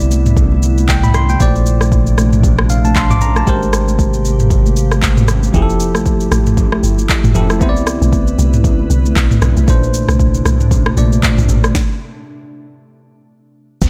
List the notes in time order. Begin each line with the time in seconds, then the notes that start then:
Already playing: C2 C3 D3 B3 E4 D5
0.00 shaker
0.11 high conga, shaker
0.26 mid tom, shaker
0.37 kick, low conga, shaker
0.52 high conga
0.63 shaker
0.78 high conga, shaker
0.89 G5, kick, clap, shaker
1.03 B5, mid tom, high conga, shaker
1.14 C6, cross-stick, low conga, shaker
1.29 G5, high conga, shaker
1.39 A#1 A#2 C3 A3 D4 C5 D5, kick, low conga, shaker
1.56 shaker
1.66 shaker
1.81 cross-stick, high conga, shaker
1.92 kick, shaker
2.07 shaker
2.18 cross-stick, high conga, shaker
2.33 mid tom, shaker
2.43 kick, low conga, shaker
2.59 cross-stick, high conga
2.70 F5, shaker
2.85 A5, high conga, shaker
2.96 C6, kick, clap, shaker
3.10 D6, mid tom, high conga, shaker
3.21 A#5, low conga, shaker
3.36 A5, cross-stick, high conga, shaker
3.46 G#1 C3 G#3 A#3 G4 A#4 C5, kick, low conga, shaker
3.62 high conga, shaker
3.73 cross-stick, shaker
3.88 high conga, shaker
3.99 kick, shaker
4.14 shaker
4.25 high conga, shaker
4.40 mid tom, shaker
4.50 kick, low conga, shaker
4.66 high conga, shaker
4.76 shaker
4.91 cross-stick, high conga, shaker
5.03 kick, clap, shaker
5.17 mid tom, high conga, shaker
5.28 cross-stick, low conga, shaker
5.43 high conga, shaker
5.53 F1 F3 A3 E4 G4 G#4, kick, low conga, shaker
5.62 A4
5.69 shaker
5.80 shaker
5.95 A1, cross-stick, high conga, shaker
6.06 kick, shaker
6.20 shaker
6.32 A1, cross-stick, high conga, shaker
6.47 mid tom, shaker
6.57 kick, low conga, shaker
6.72 cross-stick, high conga
6.83 G1, shaker
6.98 high conga, shaker
7.09 kick, clap, shaker
7.24 G1, mid tom, high conga, shaker
7.34 F1 F3 E4 G4 A4, low conga, shaker
7.50 cross-stick, high conga, shaker
7.60 C2 D3 B3 C4 E4 B4 C5, kick, low conga, shaker
7.69 D5
7.76 shaker
7.87 cross-stick, shaker
8.02 B1, high conga, shaker
8.13 kick, shaker
8.27 shaker
8.39 C2, high conga, shaker
8.53 mid tom, shaker
8.64 kick, low conga, shaker
8.79 high conga
8.90 C2, shaker
9.05 high conga, shaker
9.16 B1, kick, clap, shaker
9.31 mid tom, high conga, shaker
9.42 B1, cross-stick, low conga, shaker
9.57 C2, high conga, shaker
9.66 A#1 A#2 C3 A3 D4 C5, kick, low conga, shaker
9.83 shaker
9.94 shaker
10.09 C2, cross-stick, high conga, shaker
10.19 kick, shaker
10.34 shaker
10.45 C2, cross-stick, high conga, shaker
10.60 mid tom, shaker
10.71 kick, low conga, shaker
10.86 cross-stick, high conga
10.97 A#1 A#2 A3 D4 D5, shaker
11.12 high conga, shaker
11.23 kick, clap, shaker
11.38 A#1, mid tom, high conga, shaker
11.49 A1, low conga, shaker
11.64 cross-stick, high conga, shaker
11.75 kick, snare
13.82 F1, kick, downlifter, shaker